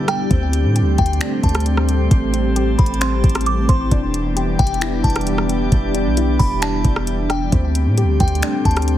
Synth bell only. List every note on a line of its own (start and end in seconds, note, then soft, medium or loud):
0.09 0.30 G5 medium
0.98 1.41 G5 medium
1.44 1.65 A5 medium
2.78 3.00 B5 medium
3.01 3.44 C6 medium
3.47 3.68 D6 medium
3.69 3.90 C6 medium
4.59 5.02 G5 medium
5.04 5.26 A5 medium
6.39 6.61 B5 medium
6.62 7.26 A5 medium
7.30 7.51 G5 medium
8.20 8.63 G5 medium
8.66 8.87 A5 medium